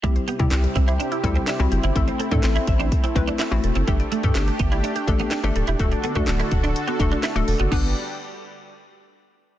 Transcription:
0.03 C2 C3 G3 A3 C4 E4 G4 E5, kick, closed hi-hat
0.16 C5, closed hi-hat
0.28 B3 G4, closed hi-hat
0.39 C3 G3 C4 E4 G4, muted clean electric guitar stroke, kick, closed hi-hat
0.51 C2 C4, muted clean electric guitar stroke, snare, clap, closed hi-hat
0.64 G3, closed hi-hat
0.76 C2 C4 E5, kick, closed hi-hat
0.88 E4 C5, closed hi-hat
1.00 D4, closed hi-hat
1.12 E4, muted clean electric guitar stroke, closed hi-hat
1.23 D2 G3 C4 E4 A4, kick, closed hi-hat
1.35 G3 C4, closed hi-hat
1.47 D4 E5, snare, clap, closed hi-hat
1.59 C2 G3 C4 E4 F#4 C5, closed hi-hat
1.72 F#1 G4, muted clean electric guitar stroke, closed hi-hat
1.83 G1 E4, closed hi-hat
1.95 A1 A3 C4 E4 A4 E5, kick, closed hi-hat
2.08 C5, muted clean electric guitar stroke, closed hi-hat
2.19 C4 A4, closed hi-hat
2.31 A2 A3 C4 D4 E4 A4, kick, closed hi-hat
2.43 A1 C4, snare, clap, closed hi-hat
2.56 A3 E4, closed hi-hat
2.67 A1 E5, muted clean electric guitar stroke, kick, closed hi-hat
2.80 D4 C5, closed hi-hat
2.92 kick, closed hi-hat
3.04 C4 E4, closed hi-hat
3.15 B1 A3 C4 E4 B4, muted clean electric guitar stroke, kick, closed hi-hat
3.28 A3 D4, closed hi-hat
3.39 E4 E5, snare, clap, closed hi-hat
3.51 A1 A3 C4 E4 F#4 C5, muted clean electric guitar stroke, closed hi-hat
3.64 E1 A4, closed hi-hat
3.75 F#1 C4 E4, closed hi-hat
3.87 G1 G3 A3 D4 G4 A4 G5, kick, closed hi-hat
4.00 D5, closed hi-hat
4.12 A3 A4, closed hi-hat
4.23 G2 A3 D4 G4 A4, muted clean electric guitar stroke, kick, closed hi-hat
4.35 G1 D4, muted clean electric guitar stroke, snare, clap, closed hi-hat
4.48 A3, closed hi-hat
4.59 G1 B3 G5, kick, closed hi-hat
4.72 E4 D5, closed hi-hat
4.84 D4, closed hi-hat
4.96 G4, muted clean electric guitar stroke, closed hi-hat
5.07 A1 A3 D4 G4 A4, kick, closed hi-hat
5.19 A3 B3, closed hi-hat
5.31 D4 G5, snare, clap, closed hi-hat
5.43 G1 A3 D4 G4 A4 D5, closed hi-hat
5.56 D1 A4, muted clean electric guitar stroke, closed hi-hat
5.67 E1 E4 G4, closed hi-hat
5.79 D1 D3 A3 D4 F#4 A4 F#5, kick, closed hi-hat
5.92 D5, muted clean electric guitar stroke, closed hi-hat
6.04 B3 A4, closed hi-hat
6.15 D2 A3 D4 F#4 A4, kick, closed hi-hat
6.27 D1 D4, snare, clap, closed hi-hat
6.40 A3 E4, closed hi-hat
6.51 D1 F#5, muted clean electric guitar stroke, kick, closed hi-hat
6.64 D4 D5, closed hi-hat
6.76 closed hi-hat
6.87 B3 F#4, closed hi-hat
7.00 E1 A3 D4 F#4 A4, muted clean electric guitar stroke, kick, closed hi-hat
7.12 A3 D4, closed hi-hat
7.23 E4 F#5, snare, clap, closed hi-hat
7.35 D1 A3 D4 F#4 A4 D5, muted clean electric guitar stroke, closed hi-hat
7.48 E1 A4, open hi-hat
7.59 F#1 B3 F#4, closed hi-hat
7.72 G1 G3 B3 D4 G4 B4 D5, kick, crash

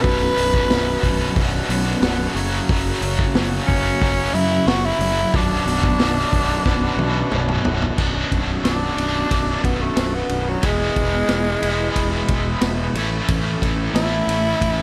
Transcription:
0.02 B0 B1 F#2 B2 B3 D4 F#4 B4, kick, open hi-hat
0.36 B0 B1 F#2 B2, open hi-hat
0.54 kick
0.70 B0 B1 F#2 B2, snare, open hi-hat
1.03 B0 B1 F#2 B2, kick, open hi-hat
1.36 B0 B1 F#2 B2, kick, open hi-hat
1.69 B1 F#2 B2, open hi-hat
2.02 B0 B1 F#2 B2, snare, open hi-hat
2.34 F#1 F#2 C#3 F#3 A3 C#4 F#4, open hi-hat
2.69 F#1 F#2 C#3 F#3, kick, open hi-hat
3.01 F#1 F#2 C#3 F#3, open hi-hat
3.19 kick
3.34 F#1 F#2 C#3 F#3, snare, open hi-hat
3.67 F#1 F#2 C#3 F#3 C#4, kick, open hi-hat
4.02 F#1 F#2 C#3 F#3, kick, open hi-hat
4.34 F#2 C#3 F#3 E4, open hi-hat
4.66 F#1 F#2 C#3 F#3 F#4, snare, open hi-hat
4.85 E4
4.99 F#1 F#2 C#3 F#3, open hi-hat
5.33 B0 B1 F#2 B2 F#3 B3 D4 F#4, kick, open hi-hat
5.66 B0 B1 F#2 B2, open hi-hat
5.83 kick
5.99 B0 B1 F#2 B2, snare, open hi-hat
6.32 B0 B1 F#2 B2, kick, open hi-hat
6.65 B0 B1 F#2 B2, kick, snare
6.96 B1 F#2 B2, high tom
7.31 B0 B1 F#2 B2, mid tom
7.48 mid tom
7.64 B0 B1 F#2 B2, floor tom
7.82 floor tom
7.96 B0 B1 F#2 B2 F#3 B3 D4 F#4, kick, crash
8.01 D4
8.31 B0, kick, ride
8.63 B0 D4, snare, ride
8.96 B0 B1 F#2 B2 F#3 D4, ride
9.31 B0, kick, ride
9.64 B0 B3, kick, ride
9.81 A3
9.96 B0, snare, ride
10.15 B3
10.29 B0, ride
10.49 F#3
10.62 E1 E2 B2 E3 G#3 B3 E4, kick, ride
10.96 E1, kick, ride
11.29 E1, snare, ride
11.62 E1 E2 B2 E3 G#3 B3 E4, ride
11.96 E1, kick, ride
12.28 E1, kick, ride
12.61 E1, snare, ride
12.94 A1 A2 E3 A3 C#4 E4, ride
12.98 E4 A4
13.28 A1, kick, ride
13.62 A1, kick, ride
13.94 A1 A2 E3 A3 C#4 E4 A4, snare, ride
14.27 A1, ride
14.61 A1, kick, ride

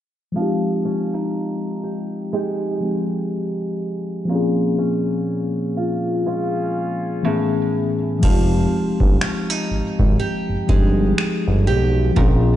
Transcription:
0.32 F3 G#3
0.37 C4 D#4
0.42 G4
0.85 C#4
1.14 D#4
1.84 G4
2.33 G#3 D#4 G4
2.80 F3 G#3 C4 D#4
2.85 G4
4.25 A#2 F3 A#3
4.30 C4 C#4
4.35 G#4
4.78 C#4
5.77 F4
6.26 G#3 C#4 F4
7.23 A2 E3 A3 B3 C#4
7.28 G#4
8.19 F3 G#3
8.23 F1 F3 C4 D#4, kick, crash
8.28 G4
9.00 G1, kick
9.21 C#4, finger snap
9.50 D#4
9.71 G#1
9.99 G#1, kick
10.20 G4
10.49 G1
10.67 G1 F3 G#3 C4 D#4, kick
10.72 G4
11.18 finger snap
11.48 G1
11.67 B1 G4
12.13 A#2 F3 A#3
12.17 A#1 C4 C#4, kick
12.22 G#4

